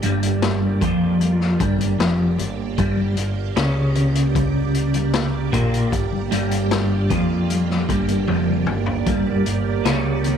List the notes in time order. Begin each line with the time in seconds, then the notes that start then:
Already playing: A#3 G4 D5
0.02 G1 G2, closed hi-hat
0.23 closed hi-hat
0.42 snare, closed hi-hat
0.81 F2 F3, kick, closed hi-hat, low conga
1.20 closed hi-hat, high conga
1.41 snare
1.59 G1 G2, kick, closed hi-hat
1.79 closed hi-hat, high conga, low conga
1.99 F1 F2, snare, closed hi-hat
2.38 G1 G2, closed hi-hat, low conga
2.78 G1 G2, kick, closed hi-hat
2.97 high conga
3.17 G1, closed hi-hat
3.56 C#2 C#3, snare, closed hi-hat
3.95 closed hi-hat, low conga
4.15 closed hi-hat
4.35 kick, closed hi-hat, high conga
4.74 closed hi-hat
4.94 closed hi-hat, high conga, low conga
5.13 snare, closed hi-hat
5.52 A#1 A#2, kick, closed hi-hat, low conga
5.74 closed hi-hat
5.92 G1 G2, kick, closed hi-hat
6.13 high conga
6.31 G1 G2, closed hi-hat
6.51 closed hi-hat
6.71 snare, closed hi-hat
7.10 F2 F3, kick, closed hi-hat, low conga
7.50 closed hi-hat, high conga
7.70 snare
7.89 G1 G2, kick, closed hi-hat
8.08 closed hi-hat, low conga
8.27 F1 F2, high tom
8.48 high conga
8.66 G1 G2, mid tom, low conga
8.86 floor tom
9.06 G1 G2, kick, closed hi-hat
9.27 high conga
9.46 G1 G2, closed hi-hat
9.85 C#2 C#3, snare, closed hi-hat
10.24 closed hi-hat, low conga